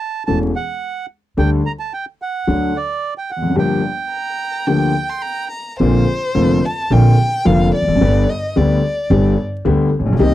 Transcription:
0.00 0.23 A5 medium
0.26 0.50 E1 medium
0.26 0.50 E2 medium
0.26 0.50 E3 medium
0.26 0.50 A3 soft
0.26 0.51 C#4 soft
0.26 0.50 A4 soft
0.26 0.39 A5 medium
0.56 1.06 F#5 medium
1.37 1.60 D2 medium
1.37 1.60 D3 medium
1.37 1.60 G3 medium
1.37 1.60 A3 soft
1.37 1.60 D4 medium
1.37 1.60 A4 medium
1.37 1.50 G5 medium
1.66 1.72 A#5 medium
1.79 1.93 A5 medium
1.93 2.05 G5 medium
2.22 2.77 F#5 medium
2.47 2.70 D2 medium
2.47 2.70 D3 medium
2.47 2.70 F#3 soft
2.47 2.70 A3 soft
2.47 2.70 D4 soft
2.47 2.70 A4 medium
2.77 3.14 D5 medium
3.18 3.31 G5 medium
3.31 3.56 F#5 medium
3.36 3.43 E2 soft
3.42 3.50 F2 soft
3.50 3.57 F#2 soft
3.56 3.79 G1 medium
3.56 3.79 G2 medium
3.56 3.79 F3 medium
3.56 3.79 A#3 soft
3.56 3.80 D4 medium
3.56 3.79 G4 medium
3.56 5.48 G5 medium
4.11 4.68 A#5 medium
4.67 4.91 D2 medium
4.67 4.91 D3 medium
4.67 4.91 F3 soft
4.67 4.91 A#3 soft
4.67 4.91 D4 soft
4.67 4.91 G4 soft
4.67 5.11 G5 medium
5.10 5.24 C6 medium
5.22 5.49 A#5 medium
5.49 5.76 A#5 medium
5.80 6.03 A#1 medium
5.80 6.03 A#2 medium
5.80 6.03 D3 medium
5.80 6.03 A#3 medium
5.80 6.03 C4 medium
5.80 6.04 F4 medium
5.80 6.67 C5 medium
6.35 6.58 F1 medium
6.35 6.58 F2 medium
6.35 6.58 D3 medium
6.35 6.58 A#3 medium
6.35 6.58 C4 medium
6.35 6.58 F4 medium
6.65 6.94 A5 medium
6.90 7.13 A#1 medium
6.90 7.14 A#1 medium
6.90 7.14 A#2 medium
6.90 7.13 D3 medium
6.90 7.14 A#3 medium
6.90 7.14 C4 soft
6.90 7.14 F4 medium
6.90 7.48 G5 medium
7.45 7.68 F1 medium
7.45 7.69 F1 medium
7.45 7.68 F2 medium
7.45 7.68 D3 medium
7.45 7.69 A#3 medium
7.45 7.69 C4 medium
7.45 7.69 F4 medium
7.45 7.73 F5 medium
7.75 8.31 D5 medium
7.81 7.87 E1 soft
7.81 7.87 E2 soft
7.87 7.94 F1 medium
7.87 7.94 F2 medium
7.95 8.01 F#1 medium
7.95 8.01 F#2 medium
8.01 8.24 G1 medium
8.01 8.24 G2 medium
8.01 8.24 D3 medium
8.01 8.24 G3 medium
8.01 8.24 B3 medium
8.01 8.24 G4 medium
8.29 8.58 D#5 medium
8.56 8.79 D2 medium
8.56 8.79 D3 medium
8.56 8.79 G3 medium
8.56 8.79 B3 medium
8.56 8.79 G4 medium
8.56 9.38 D5 medium
9.10 9.33 G1 medium
9.10 9.33 G2 medium
9.10 9.33 D3 medium
9.10 9.34 G3 medium
9.10 9.33 B3 medium
9.10 9.34 G4 medium
9.65 9.88 D2 medium
9.65 9.88 D3 medium
9.65 9.88 G3 medium
9.65 9.88 B3 medium
9.65 9.88 G4 medium
9.99 10.06 A1 medium
9.99 10.06 A1 soft
10.06 10.13 A#1 medium
10.06 10.12 A#1 medium
10.12 10.19 B1 medium
10.19 10.34 C2 medium
10.19 10.34 C3 medium
10.19 10.34 D#3 medium
10.19 10.34 A#3 medium
10.19 10.34 C4 medium
10.19 10.34 G4 medium
10.19 10.34 D#5 medium

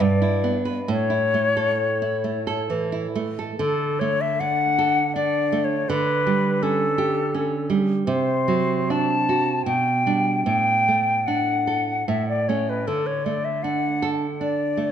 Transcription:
0.00 0.85 G2 medium
0.00 0.57 D5 medium
0.22 0.57 E4 soft
0.44 0.79 B3 soft
0.65 0.88 B4 soft
0.88 3.55 A2 medium
0.88 2.65 C#5 medium
1.10 1.46 E4 soft
1.34 1.70 A3 soft
1.57 2.28 A4 soft
2.02 2.38 E4 soft
2.24 2.60 A3 soft
2.47 2.83 A4 soft
2.70 3.06 E3 soft
2.92 3.29 E4 soft
3.15 3.51 A3 soft
3.39 3.59 A4 soft
3.58 5.85 D3 medium
3.58 4.01 A4 medium
3.99 4.64 A3 soft
3.99 4.23 C#5 medium
4.21 4.41 E5 medium
4.40 5.01 D4 soft
4.40 5.15 F#5 medium
4.78 5.37 A4 soft
5.16 5.74 D4 soft
5.16 5.66 D5 medium
5.52 5.89 A3 soft
5.64 5.90 C#5 medium
5.89 8.03 D3 medium
5.89 6.64 B4 medium
6.26 6.84 G3 soft
6.63 7.21 C#4 soft
6.63 7.71 A4 medium
6.98 7.56 G4 soft
7.34 7.92 C#4 soft
7.70 8.06 G3 soft
8.07 9.62 C3 medium
8.07 8.92 C5 medium
8.48 9.13 F#3 soft
8.90 9.51 D4 soft
8.90 9.65 A5 medium
9.29 9.66 F#4 soft
9.66 10.43 B2 soft
9.66 10.44 G5 medium
10.06 10.42 G3 soft
10.06 10.43 D4 soft
10.46 12.03 A2 soft
10.46 11.28 G5 medium
10.88 11.51 A3 soft
11.27 11.91 D4 soft
11.27 12.10 F#5 medium
11.67 12.07 A4 soft
12.08 12.85 A2 soft
12.08 12.28 E5 medium
12.29 12.50 D5 soft
12.48 12.83 A3 soft
12.48 12.84 C#4 soft
12.48 12.71 C#5 soft
12.70 12.89 B4 soft
12.87 14.92 D3 soft
12.87 13.08 A4 soft
13.07 13.26 C#5 soft
13.25 13.87 A3 soft
13.25 13.46 D5 medium
13.45 13.65 E5 soft
13.63 14.25 D4 soft
13.63 14.10 F#5 medium
14.02 14.62 A4 soft
14.41 14.92 D4 soft
14.41 14.91 D5 soft
14.77 14.92 A3 soft

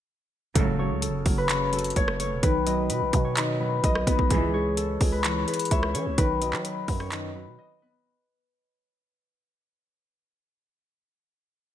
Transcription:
0.55 0.92 F#1 loud
0.55 1.00 C#2 loud
0.55 1.00 A2 medium
0.55 1.48 C#3 medium
0.55 1.00 F#3 loud
0.55 1.02 A4 loud
0.55 kick loud
0.55 closed hi-hat medium
0.79 1.24 F#3 medium
0.79 1.49 C#5 medium
0.91 1.10 C#2 loud
1.02 1.73 A4 medium
1.02 closed hi-hat medium
1.08 1.25 F#1 loud
1.26 1.93 F#1 loud
1.26 1.71 F#3 medium
1.26 kick loud
1.26 open hi-hat medium
1.38 2.42 B4 medium
1.49 2.43 C#3 medium
1.49 1.96 C#5 medium
1.49 clap loud
1.49 closed hi-hat medium
1.73 2.43 F#3 medium
1.73 3.93 A4 medium
1.73 closed hi-hat medium
1.79 closed hi-hat medium
1.84 closed hi-hat medium
1.90 closed hi-hat medium
1.96 2.33 F#1 loud
1.96 2.43 C#5 loud
1.96 2.19 C#5 medium
1.96 kick medium
1.96 closed hi-hat medium
2.08 cross-stick medium
2.20 2.43 A3 medium
2.20 3.24 C#5 medium
2.20 closed hi-hat medium
2.31 2.42 E1 loud
2.43 2.91 B1 loud
2.43 3.36 D#3 loud
2.43 2.89 B4 loud
2.43 kick loud
2.43 closed hi-hat medium
2.67 3.11 F#3 medium
2.67 3.36 D#5 medium
2.67 closed hi-hat medium
2.90 3.03 B2 loud
2.90 3.60 B4 medium
2.90 closed hi-hat medium
3.02 3.13 B1 loud
3.13 3.81 B2 loud
3.13 3.59 F#3 medium
3.13 kick loud
3.13 closed hi-hat medium
3.25 4.53 C#5 medium
3.36 4.31 D#3 medium
3.36 3.84 D#5 medium
3.36 clap loud
3.36 closed hi-hat medium
3.60 4.31 F#3 medium
3.60 4.06 B4 medium
3.84 4.06 B1 loud
3.84 4.31 D#5 loud
3.84 5.63 D#5 medium
3.84 kick medium
3.84 closed hi-hat medium
3.95 cross-stick medium
4.07 4.18 B1 loud
4.07 4.31 B3 medium
4.07 5.12 B4 medium
4.07 kick loud
4.07 closed hi-hat medium
4.19 4.30 B1 loud
4.19 kick medium
4.30 4.75 C#2 loud
4.30 4.98 C#2 loud
4.30 4.75 G#2 medium
4.30 5.23 E3 medium
4.30 4.75 E3 loud
4.30 4.83 G#4 loud
4.30 kick loud
4.30 closed hi-hat medium
4.54 5.00 G#3 medium
4.54 5.24 C#5 medium
4.77 6.97 A4 medium
4.77 closed hi-hat medium
5.01 5.46 C#2 loud
5.01 5.46 G#3 medium
5.01 kick loud
5.01 open hi-hat medium
5.12 5.47 B4 medium
5.24 6.18 E3 medium
5.24 5.71 C#5 medium
5.24 clap loud
5.24 closed hi-hat medium
5.48 6.18 G#3 medium
5.48 6.18 B4 medium
5.48 closed hi-hat medium
5.54 closed hi-hat medium
5.59 closed hi-hat medium
5.65 closed hi-hat medium
5.71 5.96 C#2 loud
5.71 5.94 C#5 medium
5.71 6.18 E5 medium
5.71 kick medium
5.71 closed hi-hat medium
5.83 cross-stick medium
5.94 6.08 E3 loud
5.94 6.18 C#4 medium
5.94 7.00 C#5 medium
5.94 closed hi-hat medium
6.06 6.17 C#2 loud
6.18 6.55 B1 loud
6.18 7.10 D#3 loud
6.18 6.65 B4 loud
6.18 kick loud
6.18 closed hi-hat medium
6.41 6.87 F#3 medium
6.41 7.11 D#5 medium
6.41 closed hi-hat medium
6.53 6.87 F#3 loud
6.53 clap medium
6.65 7.35 B4 medium
6.65 closed hi-hat medium
6.88 7.48 F#2 loud
6.88 7.33 F#3 medium
6.88 kick loud
6.88 open hi-hat medium
7.00 8.91 C#5 medium
7.00 cross-stick medium
7.11 8.05 D#3 medium
7.11 7.58 D#5 medium
7.11 clap loud
7.11 closed hi-hat medium
7.35 8.05 F#3 medium
7.35 7.82 B4 medium
7.47 7.58 B2 loud
7.59 9.37 D#5 medium
7.59 8.06 D#5 medium
7.82 8.06 B3 medium
7.82 9.87 B4 medium

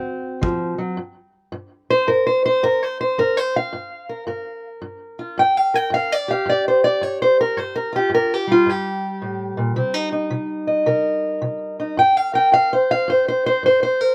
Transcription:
0.00 0.39 A2 medium
0.00 0.98 C4 soft
0.00 0.98 F#4 medium
0.41 0.78 F3 medium
0.41 kick medium
0.78 0.98 F#3 medium
0.97 1.49 G2 medium
1.52 2.04 G2 medium
1.90 2.09 C5 loud
2.07 2.59 G2 medium
2.07 2.26 A#4 medium
2.27 2.44 C5 medium
2.46 2.64 C5 loud
2.63 3.14 G2 medium
2.63 2.82 A#4 medium
2.83 2.99 C5 medium
3.01 3.19 C5 medium
3.18 3.69 G2 medium
3.18 3.37 A#4 medium
3.37 3.55 C5 medium
3.56 4.66 F5 medium
3.73 4.24 G2 medium
4.09 4.27 A#4 soft
4.27 4.79 G2 medium
4.27 5.74 A#4 medium
4.82 5.34 G2 medium
5.19 5.41 F4 soft
5.38 5.89 G2 medium
5.38 5.57 G5 loud
5.57 5.75 F5 medium
5.74 6.12 A#4 medium
5.74 5.93 G5 medium
5.90 6.43 G2 medium
5.90 6.12 F5 loud
6.12 6.30 D5 loud
6.28 7.92 G4 soft
6.28 6.49 F5 medium
6.46 6.98 G2 medium
6.46 6.67 D5 medium
6.68 6.84 C5 medium
6.84 7.03 D5 loud
7.01 7.53 G2 medium
7.01 7.21 C#5 medium
7.22 7.40 C5 medium
7.41 7.58 A#4 medium
7.57 8.08 G2 medium
7.57 7.76 C5 medium
7.76 7.94 A#4 medium
7.93 8.49 F4 soft
7.93 8.13 G4 medium
8.10 8.62 G2 medium
8.14 8.34 A#4 medium
8.34 8.51 G4 medium
8.47 11.97 G3 soft
8.52 8.69 F4 medium
8.66 9.18 G2 medium
8.66 10.33 G4 loud
9.22 9.57 A2 medium
9.57 9.76 A#2 medium
9.76 10.28 C3 medium
9.76 9.94 C4 medium
9.94 10.11 D#4 soft
10.12 11.78 D#4 soft
10.30 10.83 C3 medium
10.67 11.95 D#5 soft
10.86 11.38 C3 medium
10.86 12.33 A#4 medium
11.42 11.93 C3 medium
11.80 11.96 D#4 soft
11.97 12.49 G2 medium
11.97 12.17 G5 loud
12.17 12.35 F5 medium
12.33 12.72 A#4 soft
12.33 12.53 G5 loud
12.52 13.04 G2 medium
12.52 12.71 F5 loud
12.73 12.90 C5 medium
12.91 13.09 F5 loud
13.08 13.59 G2 medium
13.08 13.27 C5 medium
13.28 13.45 C5 medium
13.46 13.64 C5 loud
13.63 14.14 G2 medium
13.63 13.82 C5 medium
13.83 14.01 C5 medium
14.01 14.15 A#4 medium

